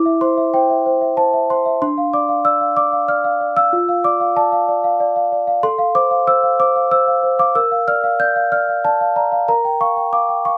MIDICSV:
0, 0, Header, 1, 2, 480
1, 0, Start_track
1, 0, Tempo, 640342
1, 1359, Time_signature, 3, 2, 24, 8
1, 7929, End_track
2, 0, Start_track
2, 0, Title_t, "Celesta"
2, 0, Program_c, 0, 8
2, 0, Note_on_c, 0, 64, 77
2, 0, Note_on_c, 0, 86, 120
2, 42, Note_on_c, 0, 76, 65
2, 70, Control_c, 0, 64, 127
2, 159, Note_on_c, 0, 84, 99
2, 160, Note_on_c, 0, 72, 65
2, 161, Note_off_c, 0, 86, 0
2, 234, Note_off_c, 0, 76, 0
2, 281, Note_on_c, 0, 76, 63
2, 354, Note_off_c, 0, 72, 0
2, 401, Note_off_c, 0, 84, 0
2, 402, Note_on_c, 0, 79, 101
2, 404, Note_on_c, 0, 72, 56
2, 474, Note_off_c, 0, 76, 0
2, 525, Note_on_c, 0, 76, 58
2, 596, Note_off_c, 0, 72, 0
2, 645, Note_on_c, 0, 72, 64
2, 715, Note_off_c, 0, 76, 0
2, 760, Note_on_c, 0, 76, 56
2, 835, Note_off_c, 0, 72, 0
2, 878, Note_on_c, 0, 72, 61
2, 878, Note_on_c, 0, 81, 107
2, 882, Note_off_c, 0, 79, 0
2, 952, Note_off_c, 0, 76, 0
2, 1002, Note_on_c, 0, 76, 64
2, 1071, Note_off_c, 0, 72, 0
2, 1119, Note_off_c, 0, 81, 0
2, 1126, Note_on_c, 0, 84, 89
2, 1127, Note_on_c, 0, 72, 52
2, 1193, Note_off_c, 0, 76, 0
2, 1242, Note_on_c, 0, 76, 65
2, 1315, Note_off_c, 0, 72, 0
2, 1330, Note_off_c, 0, 64, 0
2, 1354, Note_off_c, 0, 84, 0
2, 1360, Note_off_c, 0, 76, 0
2, 1363, Note_on_c, 0, 62, 77
2, 1363, Note_on_c, 0, 84, 111
2, 1373, Control_c, 0, 64, 0
2, 1482, Note_on_c, 0, 77, 62
2, 1490, Control_c, 0, 64, 127
2, 1599, Note_off_c, 0, 84, 0
2, 1600, Note_on_c, 0, 86, 93
2, 1601, Note_on_c, 0, 74, 63
2, 1670, Note_off_c, 0, 77, 0
2, 1716, Note_on_c, 0, 77, 59
2, 1789, Note_off_c, 0, 74, 0
2, 1835, Note_on_c, 0, 88, 112
2, 1836, Note_off_c, 0, 86, 0
2, 1836, Note_on_c, 0, 74, 70
2, 1906, Note_off_c, 0, 77, 0
2, 1954, Note_on_c, 0, 77, 60
2, 2025, Note_off_c, 0, 74, 0
2, 2072, Note_off_c, 0, 88, 0
2, 2073, Note_on_c, 0, 74, 60
2, 2073, Note_on_c, 0, 86, 110
2, 2144, Note_off_c, 0, 77, 0
2, 2193, Note_on_c, 0, 77, 61
2, 2264, Note_off_c, 0, 74, 0
2, 2311, Note_on_c, 0, 74, 66
2, 2312, Note_off_c, 0, 86, 0
2, 2312, Note_on_c, 0, 89, 107
2, 2384, Note_off_c, 0, 77, 0
2, 2431, Note_on_c, 0, 77, 70
2, 2504, Note_off_c, 0, 74, 0
2, 2553, Note_on_c, 0, 74, 52
2, 2624, Note_off_c, 0, 77, 0
2, 2672, Note_on_c, 0, 77, 68
2, 2673, Note_off_c, 0, 89, 0
2, 2673, Note_on_c, 0, 88, 122
2, 2744, Note_off_c, 0, 74, 0
2, 2764, Note_off_c, 0, 62, 0
2, 2792, Note_off_c, 0, 77, 0
2, 2794, Note_on_c, 0, 65, 83
2, 2805, Control_c, 0, 64, 0
2, 2908, Control_c, 0, 64, 127
2, 2913, Note_on_c, 0, 77, 68
2, 3030, Note_off_c, 0, 88, 0
2, 3032, Note_on_c, 0, 74, 69
2, 3032, Note_on_c, 0, 86, 117
2, 3102, Note_off_c, 0, 77, 0
2, 3151, Note_on_c, 0, 77, 72
2, 3221, Note_off_c, 0, 74, 0
2, 3268, Note_off_c, 0, 86, 0
2, 3272, Note_on_c, 0, 81, 113
2, 3273, Note_on_c, 0, 74, 66
2, 3339, Note_off_c, 0, 77, 0
2, 3390, Note_on_c, 0, 77, 68
2, 3460, Note_off_c, 0, 74, 0
2, 3511, Note_on_c, 0, 74, 69
2, 3579, Note_off_c, 0, 77, 0
2, 3629, Note_on_c, 0, 77, 68
2, 3699, Note_off_c, 0, 74, 0
2, 3746, Note_off_c, 0, 81, 0
2, 3749, Note_on_c, 0, 74, 75
2, 3817, Note_off_c, 0, 77, 0
2, 3868, Note_on_c, 0, 77, 64
2, 3937, Note_off_c, 0, 74, 0
2, 3990, Note_on_c, 0, 74, 62
2, 4056, Note_off_c, 0, 77, 0
2, 4103, Note_on_c, 0, 77, 69
2, 4177, Note_off_c, 0, 74, 0
2, 4192, Note_off_c, 0, 65, 0
2, 4222, Note_off_c, 0, 77, 0
2, 4222, Note_on_c, 0, 84, 126
2, 4223, Note_on_c, 0, 69, 89
2, 4233, Control_c, 0, 64, 0
2, 4336, Note_on_c, 0, 77, 75
2, 4367, Control_c, 0, 64, 127
2, 4460, Note_on_c, 0, 72, 72
2, 4460, Note_on_c, 0, 86, 127
2, 4461, Note_off_c, 0, 84, 0
2, 4531, Note_off_c, 0, 77, 0
2, 4579, Note_on_c, 0, 77, 75
2, 4653, Note_off_c, 0, 72, 0
2, 4702, Note_off_c, 0, 86, 0
2, 4703, Note_on_c, 0, 72, 73
2, 4703, Note_on_c, 0, 88, 127
2, 4773, Note_off_c, 0, 77, 0
2, 4823, Note_on_c, 0, 77, 68
2, 4895, Note_off_c, 0, 72, 0
2, 4943, Note_off_c, 0, 88, 0
2, 4944, Note_on_c, 0, 72, 69
2, 4945, Note_on_c, 0, 86, 118
2, 5015, Note_off_c, 0, 77, 0
2, 5066, Note_on_c, 0, 77, 60
2, 5135, Note_off_c, 0, 72, 0
2, 5183, Note_off_c, 0, 86, 0
2, 5183, Note_on_c, 0, 88, 120
2, 5184, Note_on_c, 0, 72, 68
2, 5255, Note_off_c, 0, 77, 0
2, 5302, Note_on_c, 0, 77, 67
2, 5374, Note_off_c, 0, 72, 0
2, 5422, Note_on_c, 0, 72, 59
2, 5493, Note_off_c, 0, 77, 0
2, 5539, Note_on_c, 0, 77, 72
2, 5542, Note_off_c, 0, 88, 0
2, 5543, Note_on_c, 0, 86, 123
2, 5613, Note_off_c, 0, 72, 0
2, 5632, Note_off_c, 0, 69, 0
2, 5660, Note_off_c, 0, 77, 0
2, 5662, Note_off_c, 0, 86, 0
2, 5662, Note_on_c, 0, 88, 117
2, 5663, Note_on_c, 0, 70, 94
2, 5676, Control_c, 0, 64, 0
2, 5782, Note_on_c, 0, 77, 68
2, 5803, Control_c, 0, 64, 127
2, 5902, Note_off_c, 0, 88, 0
2, 5904, Note_on_c, 0, 89, 116
2, 5905, Note_on_c, 0, 74, 70
2, 5974, Note_off_c, 0, 77, 0
2, 6024, Note_on_c, 0, 77, 73
2, 6096, Note_off_c, 0, 74, 0
2, 6144, Note_off_c, 0, 89, 0
2, 6144, Note_on_c, 0, 74, 66
2, 6145, Note_on_c, 0, 91, 117
2, 6216, Note_off_c, 0, 77, 0
2, 6265, Note_on_c, 0, 77, 65
2, 6336, Note_off_c, 0, 74, 0
2, 6384, Note_off_c, 0, 91, 0
2, 6386, Note_on_c, 0, 74, 69
2, 6386, Note_on_c, 0, 89, 104
2, 6456, Note_off_c, 0, 77, 0
2, 6511, Note_on_c, 0, 77, 58
2, 6578, Note_off_c, 0, 74, 0
2, 6626, Note_off_c, 0, 89, 0
2, 6631, Note_on_c, 0, 74, 63
2, 6631, Note_on_c, 0, 81, 117
2, 6701, Note_off_c, 0, 77, 0
2, 6753, Note_on_c, 0, 77, 67
2, 6821, Note_off_c, 0, 74, 0
2, 6866, Note_on_c, 0, 74, 59
2, 6867, Note_on_c, 0, 82, 77
2, 6869, Note_off_c, 0, 81, 0
2, 6942, Note_off_c, 0, 77, 0
2, 6987, Note_on_c, 0, 77, 67
2, 7059, Note_off_c, 0, 74, 0
2, 7078, Note_off_c, 0, 70, 0
2, 7100, Note_off_c, 0, 82, 0
2, 7108, Note_off_c, 0, 77, 0
2, 7109, Note_on_c, 0, 82, 108
2, 7110, Note_on_c, 0, 70, 80
2, 7123, Control_c, 0, 64, 0
2, 7232, Note_on_c, 0, 79, 63
2, 7247, Control_c, 0, 64, 127
2, 7350, Note_off_c, 0, 82, 0
2, 7351, Note_on_c, 0, 77, 64
2, 7352, Note_on_c, 0, 85, 101
2, 7424, Note_off_c, 0, 79, 0
2, 7471, Note_on_c, 0, 79, 56
2, 7544, Note_off_c, 0, 77, 0
2, 7591, Note_on_c, 0, 86, 94
2, 7593, Note_off_c, 0, 85, 0
2, 7593, Note_on_c, 0, 77, 63
2, 7665, Note_off_c, 0, 79, 0
2, 7712, Note_on_c, 0, 79, 52
2, 7788, Note_off_c, 0, 77, 0
2, 7835, Note_off_c, 0, 86, 0
2, 7835, Note_on_c, 0, 85, 90
2, 7836, Note_on_c, 0, 77, 55
2, 7908, Note_off_c, 0, 79, 0
2, 7929, Note_off_c, 0, 70, 0
2, 7929, Note_off_c, 0, 77, 0
2, 7929, Note_off_c, 0, 85, 0
2, 7929, End_track
0, 0, End_of_file